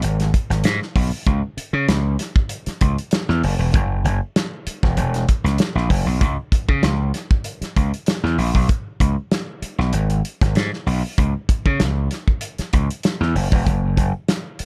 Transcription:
0.02 G#1, closed hi-hat
0.20 snare, closed hi-hat
0.34 kick, closed hi-hat
0.50 G#1, snare, closed hi-hat
0.64 G#2, snare, closed hi-hat
0.82 snare
0.96 B1, kick, open hi-hat
1.27 C#2, kick, closed hi-hat
1.57 muted slap bass stroke, closed hi-hat
1.73 C#3
1.88 C#2, snare, closed hi-hat
2.19 snare, closed hi-hat
2.36 kick
2.49 closed hi-hat
2.66 muted slap bass stroke, snare, closed hi-hat
2.81 C#2, kick, closed hi-hat
2.98 closed hi-hat
3.11 snare, closed hi-hat
3.29 E2, snare
3.44 F#1, open hi-hat
3.59 E1
3.74 F#1, kick, closed hi-hat
4.04 F#1, closed hi-hat
4.36 snare, closed hi-hat
4.67 muted slap bass stroke, closed hi-hat
4.83 E1, kick, snare
4.97 E1, closed hi-hat
5.14 snare, closed hi-hat
5.29 kick, closed hi-hat
5.44 C#2, snare, closed hi-hat
5.58 snare, closed hi-hat
5.75 A#1, snare
5.90 F#1, kick, open hi-hat
6.06 B1
6.21 C#2, kick, closed hi-hat
6.52 muted slap bass stroke, kick, closed hi-hat
6.68 C#3, kick
6.83 C#2, snare, closed hi-hat
7.14 snare, closed hi-hat
7.31 kick
7.44 closed hi-hat
7.61 muted slap bass stroke, snare, closed hi-hat
7.76 C#2, kick, closed hi-hat
7.94 closed hi-hat
8.06 snare, closed hi-hat
8.24 E2, snare
8.38 A#1, open hi-hat
8.55 B1, kick
8.69 kick, closed hi-hat
9.00 C#2, kick, closed hi-hat
9.31 snare, closed hi-hat
9.62 muted slap bass stroke, closed hi-hat
9.79 B1, snare
9.93 G#1, closed hi-hat
10.10 closed hi-hat
10.25 closed hi-hat
10.41 G#1, kick, snare, closed hi-hat
10.55 G#2, snare, closed hi-hat
10.73 snare
10.86 B1, open hi-hat
11.18 C#2, kick, closed hi-hat
11.49 muted slap bass stroke, kick, closed hi-hat
11.66 C#3, kick
11.80 C#2, snare, closed hi-hat
12.11 snare, closed hi-hat
12.28 kick
12.41 closed hi-hat
12.58 muted slap bass stroke, snare, closed hi-hat
12.73 C#2, kick, closed hi-hat
12.91 closed hi-hat
13.03 snare, closed hi-hat
13.21 E2, snare
13.35 F#1, open hi-hat
13.52 E1, kick
13.66 F#1, kick, closed hi-hat
13.97 F#1, kick, closed hi-hat
14.28 snare, closed hi-hat
14.59 muted slap bass stroke, closed hi-hat

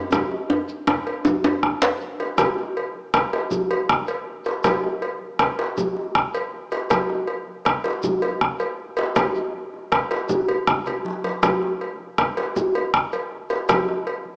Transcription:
0.12 bombo rim, bombo low, cowbell, high conga, djembe tone, low conga, djembe bass, shekere
0.31 high conga, djembe tone
0.50 cowbell, djembe slap, djembe tone
0.69 high conga, shekere
0.87 bombo rim, bombo low, cowbell, djembe tone
1.07 cowbell
1.25 bombo rim, djembe tone, high conga, low conga, djembe bass, shekere
1.44 cowbell, djembe tone
1.63 bombo rim, bombo low
1.82 cowbell, djembe slap, high conga, shekere
2.00 high conga, shekere
2.19 cowbell, djembe slap, high conga
2.38 bombo rim, bombo low, cowbell, high conga, low conga, djembe bass, shekere
2.58 djembe tone
2.77 cowbell
2.95 high conga
3.14 bombo rim, bombo low, cowbell, djembe slap, shekere
3.32 cowbell, djembe slap, high conga
3.51 high conga, low conga, djembe bass, shekere
3.71 cowbell, djembe tone
3.89 bombo rim, bombo low
4.08 cowbell, high conga, shekere
4.27 djembe slap
4.45 cowbell, djembe slap, shekere
4.64 bombo rim, bombo low, cowbell, high conga, low conga, djembe bass, shekere
4.84 bombo rim, djembe tone
5.02 cowbell
5.21 high conga
5.39 bombo rim, bombo low, cowbell, djembe slap, shekere
5.59 cowbell, djembe slap, high conga
5.77 high conga, low conga, djembe bass, shekere
5.96 djembe tone
6.15 bombo rim, bombo low
6.34 cowbell, high conga, shekere
6.53 djembe slap
6.71 cowbell, djembe slap, shekere
6.90 bombo rim, bombo low, cowbell, high conga, low conga, djembe bass, shekere
7.10 bombo rim, djembe tone
7.27 cowbell
7.47 high conga
7.65 bombo rim, bombo low, cowbell, djembe slap, shekere
7.84 cowbell, djembe slap, high conga
8.03 high conga, low conga, djembe bass, shekere
8.22 cowbell, djembe tone
8.41 bombo rim, bombo low
8.59 cowbell, high conga, shekere
8.80 djembe slap
8.97 cowbell, djembe slap, shekere
9.16 bombo rim, bombo low, cowbell, high conga, low conga, djembe bass, shekere
9.35 high conga, djembe tone, shekere
9.54 high conga
9.74 djembe slap
9.92 bombo rim, bombo low, cowbell
10.11 bombo rim, cowbell, djembe slap
10.29 high conga, low conga, djembe bass, shekere
10.48 cowbell, low conga, djembe bass
10.67 bombo rim, bombo low, low conga, djembe bass, shekere
10.86 bombo rim, cowbell, low conga, djembe bass, shekere
11.05 djembe slap, high conga
11.24 cowbell, djembe slap, high conga
11.43 bombo rim, bombo low, cowbell, high conga, low conga, djembe bass, shekere
11.62 bombo rim, djembe tone
11.81 cowbell
12.00 high conga
12.18 bombo rim, bombo low, cowbell, djembe slap, shekere
12.37 cowbell, djembe slap, high conga
12.56 high conga, low conga, djembe bass, shekere
12.75 cowbell, djembe tone
12.94 bombo rim, bombo low
13.13 cowbell, high conga, shekere
13.32 djembe slap
13.50 cowbell, djembe slap, shekere
13.69 bombo rim, bombo low, cowbell, high conga, low conga, djembe bass, shekere
13.88 bombo rim, djembe tone
14.07 cowbell
14.25 high conga

